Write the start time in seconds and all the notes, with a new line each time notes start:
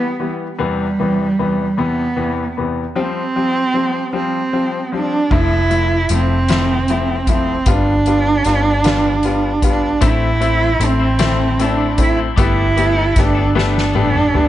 Already playing: B3
0.20 E3 G3 B3
0.57 E2 C3 E3 G3 B3
0.99 E2 C3 E3 B3
1.39 E2 C3 E3 B3
1.77 E2 C3 E3 B3
2.16 E2 C3 E3 B3
2.57 E2 C3 E3 B3
2.96 F3 G3 C4
3.36 F3 G3 C4
3.74 F3 G3 C4
4.13 F3 G3 C4
4.53 F3 G3 C4
4.92 F3 G3 C4 D4
5.31 F1 F3 A3 E4, kick, crash
5.70 F3 A3 E4, closed hi-hat
6.09 F1 F3 A3 E4, closed hi-hat
6.15 C4
6.49 F3 A3 E4, snare, closed hi-hat
6.88 F3 A3 E4, closed hi-hat
7.27 F3 A3 E4, kick, closed hi-hat
7.32 C4
7.66 G1 G3 B3 F4, kick, closed hi-hat
7.70 D4
8.06 G3 B3 F4, closed hi-hat
8.45 G1 G3 B3 F4, snare, closed hi-hat
8.84 G3 B3 F4, snare, closed hi-hat
9.23 G3 B3 F4, closed hi-hat
9.62 G3 B3 F4, kick, closed hi-hat
9.69 D4
10.01 A1 A2 E3 A3 C4 E4, kick, closed hi-hat
10.08 E4
10.40 E3 A3 C4 E4, closed hi-hat
10.60 A3 C4 E4
10.80 A1 A3 C4 E4, closed hi-hat
10.85 C4
11.00 A3 C4 E4
11.19 A2 E3 A3 C4 E4, snare, closed hi-hat
11.59 E3 A3 C4 E4, closed hi-hat
11.63 D4
11.78 A3 C4 E4
11.98 A3 C4 E4, kick, closed hi-hat
12.17 A3 C4 E4
12.36 G1 G3 A3 B3 D4 E4 G4 A4, kick, closed hi-hat
12.76 G3 A3 B3 D4 G4 A4, closed hi-hat
12.96 B3 D4 A4
13.16 G1 A3 B3 D4 G4, kick, snare, closed hi-hat
13.35 B3 D4 A4
13.55 G3 A3 B3 D4 G4 A4, snare
13.78 snare
13.93 G3 A3 B3 D4 G4 A4, high tom
14.14 B3 D4 A4, mid tom
14.34 A3 B3 G4, mid tom